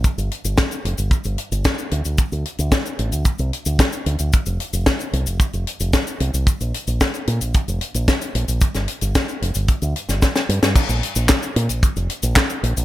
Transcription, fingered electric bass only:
\new Staff \with { instrumentName = "Fingered electric bass" } { \clef bass \time 4/4 \key bes \lydian \tempo 4 = 112 r16 g,,16 r16 g,,16 r8 f,,16 g,,16 r16 g,,16 r16 g,,16 r8 d,16 d,16 | r16 d,16 r16 d,16 r8 a,,16 d,16 r16 c,16 r16 d,16 r8 d,16 d,16 | r16 f,,16 r16 f,,16 r8 c,16 f,,16 r16 f,,16 r16 f,,16 r8 c,16 c,16 | r16 bes,,16 r16 bes,,16 r8 bes,16 bes,,16 r16 f,,16 r16 bes,,16 r8 bes,,16 bes,,16 |
r16 g,,16 r16 g,,16 r8 f,,16 g,,16 r16 d,16 r16 g,,16 r8 g,16 g,16 | r16 bes,,16 r16 bes,,16 r8 bes,16 bes,,16 r16 f,,16 r16 bes,,16 r8 bes,,16 bes,,16 | }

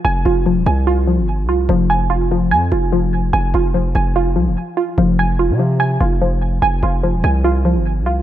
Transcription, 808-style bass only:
\new Staff \with { instrumentName = "808-style bass" } { \clef bass \time 4/4 \key f \minor \tempo 4 = 146 f,,8 f,,8. ees,,16 c,4~ c,16 g,,8~ g,,32 c,8~ c,32 | f,,2 f,8 f,,4. | f,,8 f,,4 f,,4 c,16 f,,16 r4 | f,,4~ f,,16 c4~ c16 f,,4. |
f,,8 f,,8. ees,,16 c,4~ c,16 g,,8~ g,,32 c,8~ c,32 | }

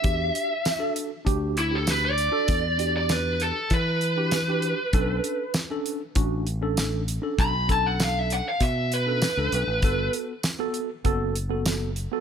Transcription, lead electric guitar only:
\new Staff \with { instrumentName = "Lead electric guitar" } { \time 4/4 \key b \minor \tempo 4 = 98 e''4. r4 e'16 a'16 b'16 d''8.~ | d''8. d''16 b'8 a'8 b'2~ | b'4 r2. | b''8 a''16 fis''16 eis''16 e''16 fis''16 eis''16 e''8 b'4.~ |
b'8 r2. r8 | }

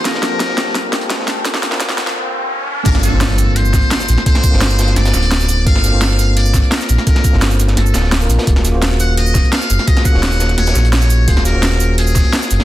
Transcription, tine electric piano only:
\new Staff \with { instrumentName = "Tine electric piano" } { \time 4/4 \key g \minor \tempo 4 = 171 <bes c' d' f' a'>8. <bes c' d' f' c''>2.~ <bes c' d' f' c''>16 | <bes c' d' f' a'>8. <bes c' d' f' c''>2.~ <bes c' d' f' c''>16 | <bes c' d' f' a'>8. <bes c' d' f' c''>2.~ <bes c' d' f' c''>16 | <bes c' d' f' a'>8. <bes c' d' f' c''>2.~ <bes c' d' f' c''>16 |
<bes c' d' f' a'>8. <bes c' d' f' c''>2.~ <bes c' d' f' c''>16 | <bes c' d' f' a'>8. <bes c' d' f' c''>2~ <bes c' d' f' c''>8 <bes c' d' f' bes'>8. | <bes des' f' ges' aes'>8. <bes des' f' ges' c''>2.~ <bes des' f' ges' c''>16 | <bes des' f' ges' aes'>8. <bes des' ees' ges' des''>2.~ <bes des' ees' ges' des''>16 |
<bes des' f' ges' aes'>8. <bes des' f' ges' c''>2.~ <bes des' f' ges' c''>16 | }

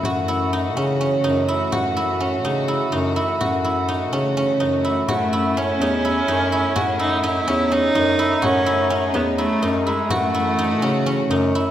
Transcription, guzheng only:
\new Staff \with { instrumentName = "Guzheng" } { \time 7/8 \key fis \dorian \tempo 4 = 125 fis'8 e'8 dis'8 cis'8 cis'8 dis'8 e'8 | fis'8 e'8 cis'8 dis'8 e'8 dis'8 e'8 | fis'8 e'8 dis'8 cis'8 cis'8 dis'8 e'8 | fis'8 e'8 cis'8 dis'8 e'8 dis'8 e'8 |
fis'8 e'8 dis'8 cis'8 cis'8 dis'8 e'8 | fis'8 e'8 cis'8 dis'8 e'8 dis'8 e'8 | fis'8 e'8 dis'8 cis'8 cis'8 dis'8 e'8 | }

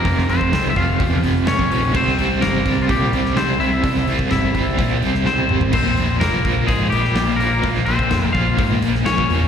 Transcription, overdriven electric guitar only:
\new Staff \with { instrumentName = "Overdriven electric guitar" } { \clef bass \time 4/4 \key c \phrygian \tempo 4 = 126 <f, c f>8 <f, c f>8 <f, c f>8 <f, c f>8 <f, c f>8 <f, c f>8 <f, c f>8 <f, c f>8 | <c g c'>8 <c g c'>8 <c g c'>8 <c g c'>8 <c g c'>8 <c g c'>8 <c g c'>8 <c g c'>8 | <c g c'>8 <c g c'>8 <c g c'>8 <c g c'>8 <c g c'>8 <c g c'>8 <c g c'>8 <c g c'>8 | <bes, f bes>8 <bes, f bes>8 <bes, f bes>8 <bes, f bes>8 <bes, f bes>8 <bes, f bes>8 <bes, f bes>8 <bes, f bes>8 |
<bes, f bes>8 <bes, f bes>8 <bes, f bes>8 <bes, f bes>8 <bes, f bes>8 <bes, f bes>8 <bes, f bes>8 <bes, f bes>8 | }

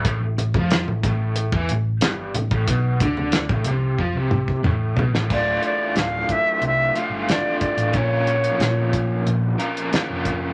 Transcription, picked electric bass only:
\new Staff \with { instrumentName = "Picked electric bass" } { \clef bass \time 4/4 \key a \minor \tempo 4 = 91 a,,16 a,,16 a,,16 f,8 a,,16 a,,8. e,16 a,,8 g,,8 a,,16 a,,16 | b,,8 d,8. a,,16 c,8 f,16 c,8. a,,8 b,,16 a,,16 | d,,8 r8 d,,8 r8 c,8 r16 g,,8 r8 a,,16 | bes,,4 bes,4 bes,,8 r8. f,,8. | }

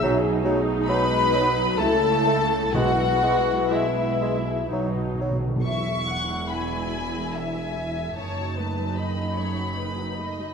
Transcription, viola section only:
\new Staff \with { instrumentName = "Viola section" } { \clef bass \time 3/4 \key e \major \tempo 4 = 70 << { dis'2 e'4 | e'2 dis'8. r16 | e'2. | dis'2. | } \\ { fis8 a8 gis8 fis8 a4 | gis2 fis8. r16 | e16 gis16 e16 gis16 e16 gis16 e16 gis16 e16 gis16 e16 gis16 | dis16 fis16 a16 fis16 dis16 fis16 a16 fis16 dis16 fis16 a16 fis16 | } >> }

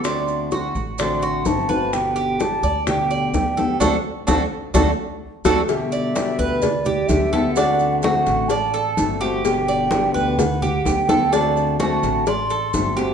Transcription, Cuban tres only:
\new Staff \with { instrumentName = "Cuban tres" } { \time 4/4 \key g \major \tempo 4 = 128 d'4 fis'4 d'8 fis'4 b'8~ | b'8 g'4 d''8 g'8 d''4 a'8 | <d' fis' a'>8 r8 <d' fis' a'>8 r8 <d' fis' a'>8 r4 <d' fis' a'>8 | r8 d''4 b'4 g'4 a'8 |
d'4 fis'4 d''8 a'4 g'8~ | g'8 d''4 b'4 g'4 a'8 | d'4 fis'4 d''8 a'4 g'8 | }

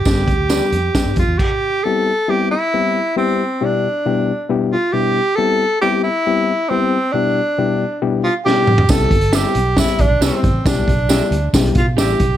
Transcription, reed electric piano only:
\new Staff \with { instrumentName = "Reed electric piano" } { \time 4/4 \key c \major \tempo 4 = 136 <g b d' g'>8 r8 <g b d' g'>8 r8 <g b d' g'>8 r4. | <g b c' e' g'>8 r8 <g b c' e' g'>8 r8 <g b c' e' g'>8 r8 <g b c' e' g'>8 r8 | <b, g b d' e' g'>8 r8 <b, g b d' e' g'>8 r8 <b, g b d' e' g'>8 r8 <b, g b d' e' g'>8 r8 | <g b c' e' g'>8 r8 <g b c' e' g'>8 r8 <g b c' e' g'>8 r8 <g b c' e' g'>8 r8 |
<b, g b d' e' g'>8 r8 <b, g b d' e' g'>8 r8 <b, g b d' e' g'>8 r8 <b, g b d' e' g'>8 r8 | <g b c' e' g'>8 r8 <g b c' e' g'>8 r8 <g b c' e' g'>8 r8 <g b c' e' g'>8 r8 | <g b d' e' g'>8 r8 <g b d' e' g'>8 r8 <g b d' e' g'>8 r8 <g b d' e' g'>8 r8 | }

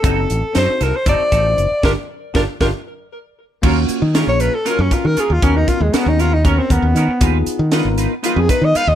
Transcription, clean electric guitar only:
\new Staff \with { instrumentName = "Clean electric guitar" } { \time 7/8 \key g \minor \tempo 4 = 117 <fis c' ees' a'>8 r8 <fis c' ees' a'>8 <c' ees' a'>8 <fis c' ees' a'>8 <c' ees' a'>8 r8 | <d' f' g'>8 r8 <d' f' g'>8 <d' f' g'>8 r4. | \key ees \minor <ges des' f' bes'>8 r8 <ges des' f' bes'>8 <des' f' bes'>8 <ges des' f' bes'>8 <des' f' bes'>8 <ges des' f' bes'>8 | <ces' des' ges' bes'>8 r8 <ces' des' ges' bes'>8 <des' ges' bes'>8 <ces' des' ges' bes'>8 <des' ges' bes'>8 <ces' des' ges' bes'>8 |
<aes ees' f' ces''>8 r8 <aes ees' f' ces''>8 <ees' f' ces''>8 <aes ees' f' ces''>8 <ees' f' ces''>8 <aes ees' f' ces''>8 | }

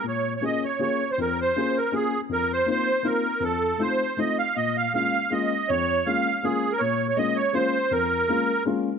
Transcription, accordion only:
\new Staff \with { instrumentName = "Accordion" } { \time 3/4 \key bes \minor \tempo 4 = 160 des''8. des''16 ees''8 des''8 des''8. c''16 | bes'8 c''4 bes'8 aes'8. r16 | bes'8 c''8 c''4 bes'4 | a'4 c''4 ees''8 f''8 |
ees''8 f''8 f''4 ees''4 | des''4 f''4 aes'8. bes'16 | des''8. des''16 ees''8 des''8 c''4 | bes'2 r4 | }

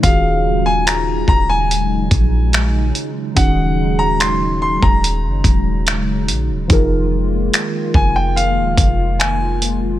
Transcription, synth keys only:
\new Staff \with { instrumentName = "Synth keys" } { \time 4/4 \key ees \major \tempo 4 = 72 <ees des' f' ges' aes'>1 | <ees des' ees' ges' aes'>1 | <f ees' f' aes' bes'>1 | }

